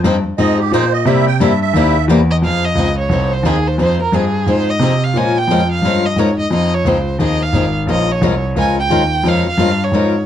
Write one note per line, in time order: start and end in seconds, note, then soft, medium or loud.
0.04 0.23 G2 loud
0.04 0.15 F3 loud
0.04 0.16 C4 loud
0.04 0.16 D#4 loud
0.04 0.16 G#4 loud
0.25 0.32 G2 soft
0.38 0.71 G#2 medium
0.38 0.59 F3 medium
0.38 0.59 C4 medium
0.38 0.59 D#4 medium
0.38 0.59 G#4 medium
0.38 0.58 D#5 medium
0.59 0.72 G4 medium
0.71 1.05 A#2 loud
0.71 0.83 F3 medium
0.71 0.84 C4 loud
0.71 0.84 D#4 loud
0.71 0.84 G#4 loud
0.71 0.93 C5 loud
0.92 1.06 D#5 loud
1.05 1.39 C3 loud
1.05 1.27 C3 medium
1.05 1.27 G3 medium
1.05 1.27 A#3 medium
1.05 1.27 E4 medium
1.05 1.27 G4 medium
1.05 1.26 E5 medium
1.27 1.40 G5 loud
1.40 1.73 G2 loud
1.40 1.51 C3 medium
1.40 1.51 G3 medium
1.40 1.51 A#3 loud
1.40 1.52 E4 loud
1.40 1.52 G4 loud
1.40 1.60 E5 medium
1.61 2.05 E5 medium
1.73 2.07 D#2 medium
1.73 1.95 C3 medium
1.73 1.95 G3 medium
1.73 1.96 A#3 medium
1.73 1.96 E4 medium
1.73 1.96 G4 medium
2.08 2.41 E2 loud
2.08 2.20 C3 medium
2.08 2.20 G3 loud
2.08 2.20 A#3 loud
2.08 2.20 E4 medium
2.08 2.20 G4 loud
2.31 2.36 D#5 medium
2.42 2.75 F2 medium
2.42 2.63 F3 medium
2.42 2.64 C4 medium
2.42 2.64 D#4 medium
2.42 2.64 G#4 medium
2.42 2.66 F5 loud
2.65 2.98 D#5 loud
2.75 3.09 C#2 medium
2.75 2.88 F3 medium
2.75 2.88 C4 medium
2.75 2.88 D#4 loud
2.79 2.88 G#4 medium
2.99 3.35 C#5 medium
3.09 3.43 C2 medium
3.09 3.31 F3 medium
3.09 3.31 C4 medium
3.09 3.32 D#4 medium
3.09 3.32 G#4 medium
3.33 3.48 C5 medium
3.43 3.77 D#2 medium
3.43 3.56 F3 medium
3.43 3.56 C4 medium
3.43 3.56 D#4 loud
3.43 3.56 G#4 medium
3.43 3.69 G#4 medium
3.67 3.80 C5 medium
3.78 3.97 F2 medium
3.78 3.99 F3 medium
3.78 3.99 C4 medium
3.78 4.00 D#4 medium
3.78 4.00 G#4 medium
3.78 3.99 C5 medium
3.99 4.06 F2 soft
3.99 4.16 A#4 medium
4.12 4.45 G2 loud
4.12 4.24 F3 medium
4.12 4.24 C4 medium
4.12 4.24 D#4 medium
4.12 4.24 G#4 medium
4.12 4.52 G#4 medium
4.46 4.79 G#2 medium
4.46 4.68 F3 medium
4.46 4.68 C4 medium
4.46 4.68 D#4 medium
4.46 4.68 G#4 medium
4.46 4.72 C5 loud
4.70 5.05 D#5 medium
4.79 5.13 C3 medium
4.79 4.92 F3 medium
4.79 4.92 C4 medium
4.79 4.92 D#4 medium
4.79 4.93 G#4 loud
5.04 5.19 F5 medium
5.14 5.47 A#2 medium
5.14 5.36 F3 medium
5.14 5.36 G#3 medium
5.14 5.36 C#4 medium
5.14 5.36 F4 medium
5.14 5.37 A#4 medium
5.14 5.40 G#5 loud
5.38 5.71 G5 loud
5.48 5.81 F2 medium
5.48 5.61 F3 medium
5.48 5.61 G#3 medium
5.48 5.61 C#4 medium
5.48 5.61 F4 medium
5.52 5.61 A#4 medium
5.72 6.07 F5 loud
5.82 6.16 G2 medium
5.82 6.04 F3 medium
5.82 6.04 G#3 medium
5.82 6.05 C#4 medium
5.82 6.05 F4 medium
5.82 6.05 A#4 medium
6.06 6.20 D#5 medium
6.16 6.36 G#2 medium
6.16 6.28 F3 medium
6.16 6.29 G#3 medium
6.16 6.29 C#4 medium
6.16 6.29 F4 medium
6.16 6.29 A#4 loud
6.16 6.38 C#5 medium
6.37 6.44 G#2 soft
6.37 6.51 D#5 medium
6.50 6.84 F2 medium
6.50 6.72 F3 medium
6.50 6.72 C4 medium
6.50 6.73 D#4 medium
6.50 6.73 G#4 medium
6.50 6.76 D#5 medium
6.74 6.90 C#5 medium
6.85 7.18 C#2 medium
6.85 6.97 F3 medium
6.85 6.97 C4 medium
6.85 6.97 D#4 medium
6.85 6.97 G#4 medium
6.85 7.21 C5 medium
7.19 7.52 D#2 medium
7.19 7.40 F3 medium
7.19 7.40 C4 medium
7.19 7.41 D#4 medium
7.19 7.41 G#4 medium
7.19 7.44 D#5 medium
7.42 7.75 F5 medium
7.53 7.86 G#1 medium
7.53 7.65 F3 medium
7.53 7.65 C4 medium
7.53 7.65 D#4 medium
7.53 7.65 G#4 medium
7.87 8.21 A#1 medium
7.87 8.09 F3 medium
7.87 8.09 G#3 medium
7.87 8.09 C#4 medium
7.87 8.09 F4 medium
7.87 8.09 A#4 medium
7.87 8.13 D#5 medium
8.12 8.44 C#5 medium
8.21 8.55 C2 medium
8.21 8.33 F3 medium
8.21 8.33 G#3 medium
8.21 8.33 C#4 medium
8.21 8.34 F4 loud
8.21 8.34 A#4 medium
8.55 8.89 C#2 medium
8.55 8.77 F3 medium
8.55 8.77 G#3 medium
8.55 8.77 C#4 medium
8.55 8.77 F4 medium
8.55 8.78 A#4 medium
8.55 8.77 G#5 loud
8.80 9.30 G5 loud
8.90 9.23 D#2 medium
8.90 9.01 F3 medium
8.90 9.02 G#3 medium
8.90 9.02 C#4 medium
8.90 9.02 F4 loud
8.90 9.02 A#4 medium
9.24 9.43 F2 medium
9.24 9.45 F3 medium
9.24 9.46 G#3 medium
9.24 9.46 C#4 medium
9.24 9.46 F4 medium
9.24 9.46 A#4 medium
9.28 9.47 F5 loud
9.45 9.52 F2 soft
9.50 9.85 F5 loud
9.57 9.91 G2 medium
9.57 9.70 F3 medium
9.57 9.70 G#3 medium
9.57 9.70 C#4 medium
9.57 9.70 F4 medium
9.57 9.70 A#4 medium
9.84 10.26 C#5 medium
9.92 10.25 G#2 medium
9.92 10.14 F3 medium
9.92 10.14 G#3 medium
9.92 10.14 C#4 medium
9.92 10.14 F4 medium
9.92 10.14 A#4 medium